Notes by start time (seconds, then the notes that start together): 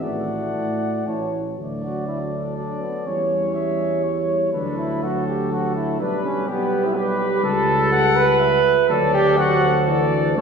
0.01 A1 A3 F#4 D5 F#5
0.54 A2
1.06 A1 E4 C#5 A5
1.57 D2 F#3 A3 D5
1.83 F#4
2.07 E4 A4
2.32 D4
2.56 F#3 D4 D5
2.81 B3
3.06 E2 G3 C#4 C#5
3.55 E5
4.03 C#5
4.53 D2 F#3 D4 A4 B4
4.78 E4
5.02 F#3 F#4 A4
5.28 G4
5.51 F#3 F#4 A4
5.76 E4
5.99 B1 G3 D4 B4
6.25 C#4
6.48 G3 B3 G4 B4
6.85 E4
6.95 G3 G4 B4
7.33 G4
7.43 C#2 G3 A4
7.92 F#5
8.17 B4
8.40 E5
8.89 D2 F#3 A4 D5
9.14 G4
9.38 F#3 F#4 A4 F#5
9.88 E3 D5
10.37 F#1 D3 A3 A4 C#5